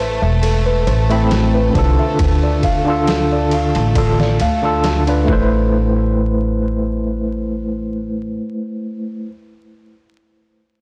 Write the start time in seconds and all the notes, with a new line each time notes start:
Already playing: A1 A3 A4
0.00 C5
0.22 E1 E5
0.43 A4, ride
0.66 B4
0.87 A1 C5, ride
1.10 A3 C4 E4 E5 B5, ride
1.31 A4, snare, ride
1.54 B4
1.73 C2 D3 D4 F4 C5, kick, ride
1.79 A4
1.99 E5
2.19 D2 A4, kick, ride
2.43 D5
2.63 F5, kick, ride
2.85 D3 D4 F4 A5
2.90 A4
3.07 A4, snare, ride
3.32 D5
3.51 F5, ride
3.75 A1 A5, ride
3.95 D3 D4 F4 A4, kick, ride
4.20 D5, snare
4.40 D2 F5, ride
4.62 D3 D4 F4 A4 A5
4.84 A4, snare, ride
5.07 D3 D4 F4 B4 D5, ride
5.25 A1 A3 E4, kick
5.29 A4 B4 C5